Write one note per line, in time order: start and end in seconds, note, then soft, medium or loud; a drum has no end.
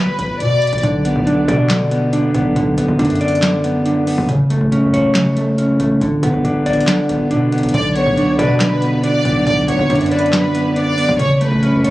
0.00 0.17 G1 loud
0.00 0.38 B4 medium
0.19 0.42 G1 loud
0.19 kick medium
0.19 closed hi-hat medium
0.40 0.71 B2 loud
0.40 0.81 D5 medium
0.40 closed hi-hat medium
0.62 closed hi-hat soft
0.62 open hi-hat medium
0.67 closed hi-hat medium
0.73 0.83 G1 loud
0.73 kick medium
0.73 closed hi-hat medium
0.78 closed hi-hat medium
0.83 1.14 B1 loud
0.83 1.69 D3 loud
0.83 kick loud
0.83 closed hi-hat medium
1.05 1.90 B3 medium
1.05 closed hi-hat medium
1.16 1.47 B1 loud
1.16 kick medium
1.27 2.12 D4 loud
1.27 closed hi-hat medium
1.48 2.31 B2 loud
1.48 2.56 D5 medium
1.48 kick loud
1.48 closed hi-hat medium
1.70 2.55 D3 medium
1.70 snare loud
1.70 clap medium
1.70 closed hi-hat medium
1.91 2.33 B3 medium
1.91 closed hi-hat medium
2.13 2.98 D4 medium
2.13 closed hi-hat medium
2.34 2.55 B1 loud
2.34 2.76 B3 medium
2.34 kick medium
2.34 closed hi-hat medium
2.56 2.77 B1 loud
2.56 3.41 D3 loud
2.56 kick loud
2.56 closed hi-hat medium
2.78 2.88 B1 loud
2.78 3.63 B3 medium
2.78 closed hi-hat medium
2.88 2.99 D2 loud
2.88 kick loud
2.99 4.14 F#2 loud
2.99 3.84 D4 loud
2.99 closed hi-hat medium
3.05 closed hi-hat medium
3.10 closed hi-hat medium
3.15 closed hi-hat medium
3.21 4.29 D5 medium
3.21 closed hi-hat medium
3.28 closed hi-hat medium
3.35 closed hi-hat medium
3.42 4.29 D3 medium
3.42 snare loud
3.42 clap medium
3.42 closed hi-hat medium
3.64 4.06 B3 medium
3.64 closed hi-hat medium
3.86 4.29 D4 medium
3.86 closed hi-hat medium
4.07 4.29 B3 medium
4.07 open hi-hat medium
4.18 4.28 D2 loud
4.18 kick loud
4.29 4.52 F#1 loud
4.29 5.14 C#3 loud
4.29 kick loud
4.29 closed hi-hat medium
4.50 4.61 G1 loud
4.50 5.35 A3 medium
4.50 closed hi-hat medium
4.61 4.84 F#1 loud
4.61 kick loud
4.72 5.57 C#4 medium
4.72 closed hi-hat medium
4.83 4.93 F#2 loud
4.93 5.76 F#1 loud
4.93 6.01 C#5 medium
4.93 kick loud
4.93 closed hi-hat medium
5.15 6.01 C#3 medium
5.15 snare loud
5.15 clap medium
5.15 closed hi-hat medium
5.37 5.79 A3 medium
5.37 closed hi-hat medium
5.58 6.01 C#4 medium
5.58 closed hi-hat medium
5.80 6.01 F#1 loud
5.80 6.01 A3 medium
5.80 kick loud
5.80 closed hi-hat medium
6.01 6.22 G1 loud
6.01 6.86 D3 loud
6.01 kick loud
6.01 closed hi-hat medium
6.23 6.33 G2 loud
6.23 7.08 B3 medium
6.23 closed hi-hat medium
6.34 6.44 G1 loud
6.34 kick loud
6.44 6.65 G1 loud
6.44 7.30 D4 medium
6.44 closed hi-hat medium
6.66 7.08 G1 loud
6.66 7.74 D5 medium
6.66 kick loud
6.66 closed hi-hat medium
6.73 closed hi-hat medium
6.80 closed hi-hat medium
6.88 7.73 D3 loud
6.88 snare loud
6.88 clap medium
6.88 closed hi-hat medium
7.09 7.32 G1 loud
7.09 7.51 B3 medium
7.09 kick medium
7.09 closed hi-hat medium
7.31 7.62 B2 loud
7.31 7.74 D4 medium
7.31 closed hi-hat medium
7.52 7.74 B3 medium
7.52 closed hi-hat soft
7.52 open hi-hat medium
7.58 closed hi-hat medium
7.63 7.73 G1 loud
7.63 kick medium
7.63 closed hi-hat medium
7.69 closed hi-hat medium
7.74 8.05 B1 loud
7.74 8.59 D3 loud
7.74 7.91 D5 loud
7.74 kick loud
7.74 closed hi-hat medium
7.96 8.81 B3 medium
7.96 8.36 C#5 medium
7.96 closed hi-hat medium
8.06 8.37 B1 loud
8.06 kick loud
8.17 9.02 D4 medium
8.17 closed hi-hat medium
8.39 9.22 B2 loud
8.39 8.55 B4 medium
8.39 9.47 D5 medium
8.39 kick loud
8.39 closed hi-hat medium
8.60 9.46 D3 medium
8.60 9.01 B4 medium
8.60 snare loud
8.60 clap medium
8.60 closed hi-hat medium
8.82 9.24 B3 medium
8.82 closed hi-hat medium
9.04 9.89 D4 medium
9.04 9.44 D5 loud
9.04 closed hi-hat medium
9.25 9.46 B1 loud
9.25 9.67 B3 medium
9.25 kick loud
9.25 closed hi-hat medium
9.47 9.67 B1 loud
9.47 10.32 D3 loud
9.47 9.63 D5 loud
9.47 kick loud
9.47 closed hi-hat medium
9.68 9.79 B1 loud
9.68 10.53 B3 medium
9.68 10.09 C#5 medium
9.68 closed hi-hat medium
9.79 9.89 D2 loud
9.79 kick medium
9.90 11.05 F#2 loud
9.90 10.75 D4 loud
9.90 closed hi-hat medium
9.95 closed hi-hat medium
10.01 closed hi-hat medium
10.06 closed hi-hat medium
10.11 10.28 B4 medium
10.11 11.19 D5 medium
10.11 closed hi-hat medium
10.19 closed hi-hat medium
10.26 closed hi-hat medium
10.33 11.19 D3 medium
10.33 10.74 B4 medium
10.33 snare loud
10.33 clap medium
10.33 closed hi-hat medium
10.55 10.97 B3 medium
10.55 closed hi-hat medium
10.76 11.19 D4 medium
10.76 11.17 D5 medium
10.76 closed hi-hat medium
10.98 11.19 B3 medium
10.98 open hi-hat medium
11.09 11.19 D2 loud
11.09 kick medium
11.19 11.42 F#1 loud
11.19 11.90 C#3 loud
11.19 11.36 C#5 loud
11.19 kick loud
11.19 closed hi-hat medium
11.41 11.51 G1 loud
11.41 11.90 A3 medium
11.41 11.82 B4 medium
11.41 closed hi-hat medium
11.52 11.75 F#1 loud
11.52 kick medium
11.63 11.90 C#4 medium
11.63 closed hi-hat medium
11.73 11.84 F#2 loud
11.84 11.90 F#1 loud
11.84 11.90 A4 medium
11.84 11.90 C#5 medium
11.84 kick loud
11.84 closed hi-hat medium